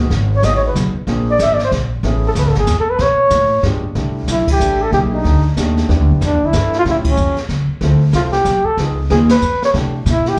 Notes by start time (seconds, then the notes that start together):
0.10 G#1, brush sweep, kick, snare
0.36 C#5
0.42 A1 G#3 B3 D#4 F#4 G#4 D#5, kick, snare, hi-hat pedal
0.56 C#5
0.67 B4
0.75 B1, kick, snare, hi-hat pedal
0.94 muted upright bass stroke
1.07 A#1 A#3 C4 D4 F4 G#4, brush sweep, kick, snare
1.31 D5
1.39 G#1 E5, kick, snare, hi-hat pedal
1.54 D5
1.59 snare
1.64 C5
1.72 A#1, kick, snare
2.03 A1 A3 B3 C#4 E4 G#4, brush sweep, kick, snare
2.27 A4
2.35 C#2 B4, kick, snare, hi-hat pedal
2.47 A1 A4
2.55 G#1 G#4, snare
2.67 E2, kick, snare, hi-hat pedal
2.80 A4
2.90 B4
2.99 B2 C#5, brush sweep, kick, snare
3.30 A2, kick, snare, hi-hat pedal
3.63 G2 G#3 B3 D4 F4 G4, kick, snare
3.83 muted upright bass stroke
3.95 C2 A3 D4 E4 G4, brush sweep, kick, snare
4.27 B1 E4, kick, snare, hi-hat pedal
4.48 kick, ride
4.52 G4
4.59 A1 A3 D4 E4 A4, hi-hat pedal
4.82 A4
4.91 B1 A#3 D#4 E4 G4 G#4, brush sweep, kick, snare
5.11 A3 D4 D#4 G4
5.24 D2, kick, snare
5.56 D#2 A3 D4 D#4 G4, kick, snare, hi-hat pedal
5.77 snare
5.89 E2 B3 D4 E4 G4, brush sweep, kick, snare
6.00 D2
6.11 B1
6.21 F2, kick, snare, hi-hat pedal
6.25 D4
6.32 E2
6.43 D2 E4
6.53 G2 B3 D4 E4 A4, kick, snare, hi-hat pedal
6.73 snare
6.79 F4
6.85 A2 C#4 E4 F4 G4, brush sweep, kick, snare
6.89 E4
7.04 kick, ride
7.10 C#4
7.17 F2, hi-hat pedal
7.37 snare
7.49 C#2, kick, snare
7.68 muted upright bass stroke
7.81 D2 C4 E4 F4 A4, brush sweep, kick, snare
8.13 C2 C4 E4 F4 A4, kick, snare, hi-hat pedal
8.32 G4, snare
8.45 B1, kick, snare, hi-hat pedal
8.64 A4, muted upright bass stroke
8.77 C#2 B3 D#4 F4 G#4, brush sweep, kick, snare
9.10 D#2 B3 D#4 F4 G#4, kick, snare
9.29 B4, snare, ride
9.42 F2, hi-hat pedal
9.62 C#5, snare
9.73 C3 A3 D4 E4 G4, brush sweep, kick, snare
10.06 B2, snare, hi-hat pedal
10.11 E4
10.26 G4, snare